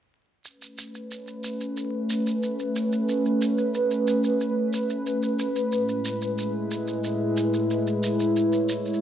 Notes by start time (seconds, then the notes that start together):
0.44 A3 C#4 B4, shaker
0.61 shaker
0.78 shaker
0.94 shaker
1.11 shaker
1.27 shaker
1.44 shaker
1.60 shaker
1.77 shaker
2.10 shaker
2.26 shaker
2.43 shaker
2.59 shaker
2.76 shaker
2.92 shaker
3.09 shaker
3.25 shaker
3.41 shaker
3.58 shaker
3.74 shaker
3.91 shaker
4.07 shaker
4.24 shaker
4.40 shaker
4.73 shaker
4.90 shaker
5.06 shaker
5.23 shaker
5.39 shaker
5.56 shaker
5.72 A2 G#3 E4, shaker
5.88 shaker
6.05 shaker
6.22 shaker
6.38 shaker
6.71 shaker
6.87 shaker
7.04 shaker
7.37 shaker
7.54 shaker
7.70 shaker
7.87 shaker
8.03 shaker
8.20 shaker
8.35 C#5, shaker
8.52 shaker
8.69 shaker
8.85 shaker
8.93 shaker